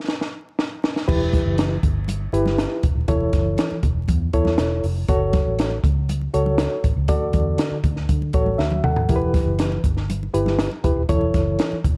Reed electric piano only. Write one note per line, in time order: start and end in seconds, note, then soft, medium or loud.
1.08 1.79 E3 medium
1.08 1.76 E4 medium
1.08 1.76 G4 medium
1.08 1.76 B4 medium
2.33 2.84 E4 medium
2.33 2.84 G4 medium
2.33 2.84 B4 medium
3.08 3.79 E3 medium
3.08 3.76 E4 medium
3.08 3.76 A4 medium
3.08 3.76 C#5 medium
4.33 4.84 E4 medium
4.33 4.84 A4 medium
4.33 4.84 C#5 medium
5.09 5.77 F#4 medium
5.09 5.76 A4 medium
5.09 5.77 C#5 medium
6.34 6.85 F#4 medium
6.34 6.85 A4 medium
6.34 6.85 C#5 medium
7.08 7.80 D3 medium
7.08 7.77 F#4 medium
7.08 7.76 A4 medium
7.08 7.77 D5 medium
8.34 8.85 F#4 medium
8.34 8.59 A4 medium
8.34 8.59 C#5 medium
8.58 8.83 E5 medium
8.84 9.32 A4 medium
8.84 9.32 F#5 medium
9.10 9.81 E3 medium
9.10 9.77 E4 medium
9.10 9.77 G4 medium
9.10 9.16 A#4 medium
9.16 9.80 B4 medium
10.34 10.68 E4 medium
10.34 10.68 G4 medium
10.34 10.68 B4 medium
10.84 11.01 E4 medium
10.84 11.01 G4 medium
10.84 11.01 B4 medium
11.09 11.81 E3 medium
11.09 11.77 E4 medium
11.09 11.77 A4 medium
11.09 11.77 C#5 medium